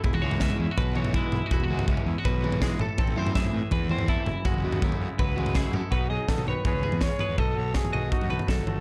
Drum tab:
SD |----o-----------|------------o---|----o-----------|------------o---|
T2 |-o------o-o-----|-o------o-o-----|-o------o-o-----|-o------o-o-----|
FT |o--o-o--o--o--o-|o--o-o--o--o--o-|o--o-o--o--o--o-|o--o-o--o--o--o-|
BD |o---o---o---o---|o---o---o---o---|o---o---o---o---|o---o---o---o---|

SD |----o-------o---|----o-------o---|
T2 |-----o----oo--o-|-----o----oo--o-|
FT |o---ooo-o-oo--o-|o---ooo-oooo--o-|
BD |o---o---o---o---|o---o---o---o---|